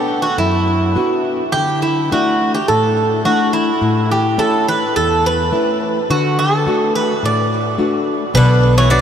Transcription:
Already playing: B3 D4 G4 F#5
0.22 F#4
0.38 F#2 E4
0.95 B3 D4 F#4
1.52 D3 G4
1.82 E4
2.12 A3 D4 E4 F#4
2.54 G4
2.68 A2 A4
3.25 A3 D4 E4 F#4
3.53 E4
3.81 A2
4.11 G4
4.37 A3 C#4 E4 A4
4.69 B4
4.96 E2 A4
5.26 B4
5.51 A3 C#4 E4
6.10 D3 F#4
6.39 A4
6.66 A3 D4 F#4
6.96 B4
7.23 A2 D5
7.78 A3 D4 F#4
8.34 B1 B2 D3 B4
8.78 E3 C#5
8.90 F#3 B3 D4 F#4 D5

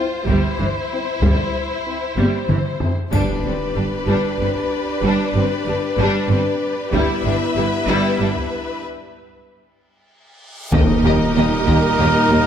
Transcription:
Already playing: F4 C5
0.26 G1 G2 G3 E4, taiko
0.58 G1 G2 E3
0.93 C4 E4
1.22 G1 G2 G3, taiko
1.86 C4 E4
2.16 G1 G2 G3, taiko high
2.48 G1 G2 E3, taiko mid
2.81 C4 E4, taiko low
3.12 G1 G2 G3 D4 G4 B4 D5, taiko, impact, triangle
3.44 G1 G2 G3 C4
3.75 G1 G2 G3 D4
4.07 G1 G2 G3 D4
4.39 G1 G2 G3 C4
4.56 taiko
5.02 G1 G2 G3 D4
5.35 G1 G2 G3 C4
5.66 G1 G2 G3 D4
5.98 G1 G2 G3 D4
6.29 G1 G2 G3 C4
6.92 G1 G2 G3 B3 E4 B4 E5, taiko
7.24 G1 G2 G3 D4
7.57 G1 G2 G3 E4
7.87 G1 G2 G3 E4
8.20 G1 G2 G3 D4
8.37 taiko
8.83 reverse cymbal
10.72 D#2 A#2 D#3 G3 A#3 D#4 G4 A#4 D#5, taiko, impact
11.04 D#2 A#3 G4 D#5
11.35 D#2 A#3 G4 D#5, taiko low-mid
11.66 D#2 A#3 G4 D#5, taiko
11.99 D#2 A#3 G4 D#5
12.29 D#2 A#3 G4 D#5

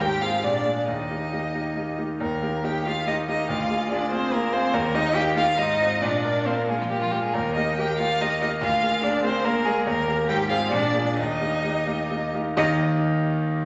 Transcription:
0.00 G#2 G4 G5
0.21 C4 F4 G#4 F5
0.43 A#2 D4 D5
0.65 A#3 F4 G#4
0.76 D4 D5
0.87 D#2 D#4 D#5
1.10 A#3 D#4 G4
1.32 A#3 D#4 G4
1.54 A#3 D#4 G4
1.76 A#3 D#4 G4
1.98 A#3 D#4 G4
2.20 D#2 A#3 A#4
2.42 A#3 D#4 G4
2.64 A#3 D#4 G4 G5
2.85 A#3 D#4 F4 G4 F5
3.06 A#3 D#4 G4 D#5
3.28 A#3 D#4 G4 D#5
3.49 D2 F4 F5
3.70 A#3 F4 G#4
3.91 A#3 D4 F4 G#4 D5
4.12 A#3 C4 F4 G#4 C5
4.32 A#3 F4 G#4 A#4
4.53 A#3 C4 F4 G#4 C5
4.74 D#2 A#3 A#4
4.94 A#3 D#4 G4 D#5
5.15 A#3 D#4 G4 G5
5.36 A#3 D#4 F4 G4 F5
5.57 G#2 D#4 D#5
5.80 C4 F4
6.01 A#2 D4 D5
6.24 A#3 F4 A#4
6.46 A#3 C4 F4 A#4 C5
6.57 A#3 A#4
6.68 G#3 A#3 F4 G#4 A#4
6.79 F3 F4
6.89 G3 A#3 F4 G4 A#4
7.02 F3 F4
7.11 G3 A#3 F4 G4 A#4
7.23 G#3 G#4
7.33 D#2 A#3 A#4
7.56 A#3 D#4 G4 A#4 D#5
7.78 A#3 G4 A#4 G5
7.99 A#3 F4 G4 A#4 F5
8.20 A#3 D#4 G4 A#4 D#5
8.41 A#3 D#4 G4 A#4 D#5
8.61 D2 F4 F5
8.82 A#3 G#4 A#4
9.03 A#3 D4 G#4 A#4 D5
9.23 A#3 C4 G#4 A#4 C5
9.44 A#3 G#4 A#4
9.65 G#3 A#3 G#4 A#4
9.86 D#2 A#3 A#4
10.08 A#3 G4 A#4
10.27 G#2 G4 G5
10.49 C4 F4 G#4 F5
10.70 A#2 D4 D5
10.93 A#3 F4 G#4
11.04 D4 D5
11.15 D#2 D#4 D#5
11.40 A#3 D#4 G4
11.63 A#3 D#4 G4
11.87 A#3 D#4 G4
12.10 A#3 D#4 G4
12.34 A#3 D#4 G4
12.57 D#2 D#3 A#3 D#4 G4 D#5

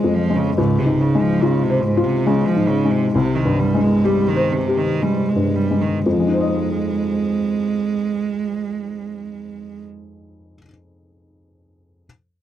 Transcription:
Already playing: A#1 F2 G#3 F4 C#5
0.04 F2
0.14 F3
0.30 G#3
0.36 C#3
0.58 C#2 G#2
0.79 C3
0.86 G#2
1.01 C#3
1.15 G#3
1.21 F3
1.42 C#3 F4
1.64 C3
1.70 C5
1.84 G#2
1.97 F4
2.04 C3
2.26 C#3 G#3
2.48 F3
2.56 G#2
2.69 C#3
2.85 G#3
2.91 C3
3.15 C2 C3
3.35 D#3
3.45 G2
3.59 G3
3.74 G#3
3.81 G#3
4.04 G3 G4
4.28 D#3
4.36 C5
4.52 C3
4.68 G4
4.78 D#3
5.02 G3 G#3
5.29 G#3
5.36 G2
5.56 G3
5.71 G#3
5.82 D#3
6.06 F2 G#3
6.13 F3
6.20 G#3
6.27 D#4
6.34 C5
6.41 D#5

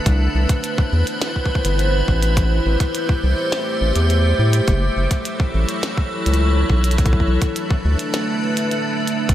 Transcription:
0.06 C2 E4 B4 C5, kick, closed hi-hat
0.35 C2
0.49 kick, closed hi-hat
0.64 closed hi-hat
0.78 kick
0.93 E2
1.07 closed hi-hat
1.22 snare, closed hi-hat
1.36 kick
1.46 kick
1.55 kick
1.65 G1, closed hi-hat
1.79 closed hi-hat
2.08 A1, kick
2.23 closed hi-hat
2.37 A3 G4 C5, kick, closed hi-hat
2.66 A1
2.80 kick, closed hi-hat
2.95 closed hi-hat
3.09 kick
3.24 C2
3.52 snare, closed hi-hat
3.81 A1
3.96 E2, closed hi-hat
4.10 closed hi-hat
4.39 A2
4.53 closed hi-hat
4.68 F#1 F#3 E4 A4, kick, closed hi-hat
4.97 F#1
5.11 kick, closed hi-hat
5.25 closed hi-hat
5.40 kick
5.54 A1
5.69 closed hi-hat
5.83 snare, closed hi-hat
5.97 kick
6.26 C#2, closed hi-hat
6.34 closed hi-hat
6.70 B1, kick
6.84 closed hi-hat
6.91 closed hi-hat
6.98 A3 D4 B4, kick, closed hi-hat
7.06 kick, closed hi-hat
7.13 kick
7.20 kick
7.27 B1
7.42 kick, closed hi-hat
7.56 closed hi-hat
7.71 kick
7.85 D2
7.99 closed hi-hat
8.14 snare, closed hi-hat
8.57 closed hi-hat
8.71 closed hi-hat
9.07 closed hi-hat
9.29 C2, kick, closed hi-hat

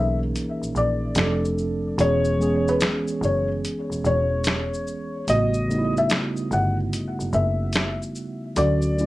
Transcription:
Already playing: B1 E3 A#3 C#4 D#4 G#4 A#4 E5
0.36 closed hi-hat, shaker
0.61 A#1, shaker
0.75 A#1 D5, shaker
1.15 F1 F3 A3 C4 D4, finger snap, snare, closed hi-hat, shaker
1.19 A4
1.45 shaker
1.58 shaker
1.97 E1 E3 G#3 B3 C#4 G#4 C#5, closed hi-hat, shaker
2.25 shaker
2.39 E3 G#3 B3 C#4 G#4, shaker
2.68 B4, shaker
2.81 finger snap, snare, closed hi-hat, shaker
3.08 shaker
3.21 F#1 C#5, shaker
3.65 closed hi-hat, shaker
3.90 E1, shaker
4.05 E1 C#5, shaker
4.44 finger snap, snare, closed hi-hat, shaker
4.74 shaker
4.87 shaker
5.27 A1 C#3 G3 A3 B3 F#4 D#5, closed hi-hat, shaker
5.54 shaker
5.68 C#3 G3 A3 B3 D#4, shaker
5.78 E4
5.97 E5, shaker
6.10 finger snap, snare, closed hi-hat, shaker
6.37 shaker
6.51 G1 F#5, shaker
6.93 closed hi-hat, shaker
7.19 F#1, shaker
7.33 F#1 E5, shaker
7.73 snare, closed hi-hat, shaker
7.77 finger snap
8.02 shaker
8.15 shaker
8.55 D2 D3 F#3 A3 C#4 F#4 D5, closed hi-hat, shaker
8.82 shaker
8.97 D3 F#3 A3 C#4 E4, shaker

